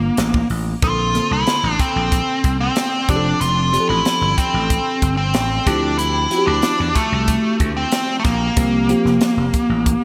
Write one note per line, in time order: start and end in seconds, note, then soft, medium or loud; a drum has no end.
0.00 0.84 D#3 medium
0.00 0.47 A#3 medium
0.00 0.82 A#3 medium
0.00 0.85 D4 medium
0.00 0.85 F4 medium
0.17 0.41 A1 medium
0.17 snare loud
0.17 closed hi-hat medium
0.34 kick medium
0.50 0.73 A1 medium
0.50 open hi-hat medium
0.82 1.18 A#1 medium
0.82 1.10 D3 medium
0.82 1.11 A#3 soft
0.82 1.11 C4 medium
0.82 1.32 F4 loud
0.82 1.11 A4 medium
0.82 kick loud
0.82 closed hi-hat medium
1.14 2.27 D3 medium
1.14 2.28 A#3 medium
1.14 2.28 C4 medium
1.14 2.28 A4 medium
1.14 snare soft
1.14 closed hi-hat medium
1.31 1.43 C2 medium
1.31 1.82 E4 loud
1.47 snare loud
1.47 closed hi-hat medium
1.63 1.75 A1 medium
1.79 2.56 C4 medium
1.79 kick medium
1.79 closed hi-hat medium
1.96 2.19 A#1 medium
2.12 kick medium
2.12 closed hi-hat medium
2.44 2.67 C2 medium
2.44 kick medium
2.44 closed hi-hat medium
2.60 3.10 C4 loud
2.76 snare loud
2.76 closed hi-hat medium
3.08 3.32 F1 loud
3.08 3.65 F3 medium
3.08 3.65 C4 medium
3.08 3.65 D4 medium
3.08 3.41 D4 medium
3.08 3.15 G4 medium
3.08 kick loud
3.08 closed hi-hat medium
3.16 3.69 A4 medium
3.41 3.76 F1 loud
3.41 3.88 F4 medium
3.41 closed hi-hat medium
3.72 4.86 F3 medium
3.72 4.86 C4 medium
3.72 4.86 D4 medium
3.72 3.80 G4 medium
3.72 snare soft
3.72 closed hi-hat medium
3.80 4.90 A4 medium
3.89 4.01 A1 medium
3.89 4.39 E4 medium
4.05 snare medium
4.05 closed hi-hat medium
4.21 4.33 G1 medium
4.38 5.16 C4 medium
4.38 kick medium
4.38 closed hi-hat medium
4.54 4.77 A1 medium
4.70 kick medium
4.70 closed hi-hat medium
5.02 5.35 G1 medium
5.02 kick medium
5.02 closed hi-hat medium
5.17 5.68 C4 medium
5.34 5.58 A1 medium
5.34 snare loud
5.34 closed hi-hat medium
5.66 6.25 D2 medium
5.66 6.23 F3 medium
5.66 6.23 C4 medium
5.66 5.97 D4 medium
5.66 6.23 E4 medium
5.66 6.23 G4 medium
5.66 kick medium
5.66 snare soft
5.66 closed hi-hat medium
5.98 6.47 E4 loud
5.98 closed hi-hat medium
6.30 7.44 F3 medium
6.30 7.44 C4 medium
6.30 7.44 E4 medium
6.30 6.38 F#4 medium
6.30 snare soft
6.30 closed hi-hat medium
6.38 7.47 G4 medium
6.47 6.59 D2 medium
6.47 6.97 D4 medium
6.62 snare medium
6.62 closed hi-hat medium
6.80 6.91 E2 medium
6.95 7.72 A3 medium
6.95 kick medium
6.95 closed hi-hat medium
7.12 7.35 C2 medium
7.28 kick medium
7.28 closed hi-hat medium
7.60 7.84 D2 medium
7.60 kick medium
7.60 closed hi-hat medium
7.77 8.15 C4 medium
7.92 snare medium
7.92 closed hi-hat loud
8.19 8.24 A3 medium
8.24 8.48 A#1 medium
8.24 10.04 A#3 medium
8.24 kick medium
8.24 snare soft
8.24 closed hi-hat medium
8.56 8.92 C2 loud
8.56 8.85 F3 medium
8.56 8.85 A#3 medium
8.56 8.85 C4 medium
8.56 8.85 G4 medium
8.56 kick loud
8.56 closed hi-hat medium
8.89 10.02 F3 medium
8.89 10.02 A#3 medium
8.89 10.02 C4 medium
8.89 10.02 G4 medium
8.89 closed hi-hat medium
9.05 9.17 F1 medium
9.05 snare soft
9.21 snare loud
9.21 closed hi-hat medium
9.37 9.49 F1 medium
9.54 kick medium
9.54 closed hi-hat medium
9.69 9.93 A1 medium
9.86 kick medium
9.86 closed hi-hat loud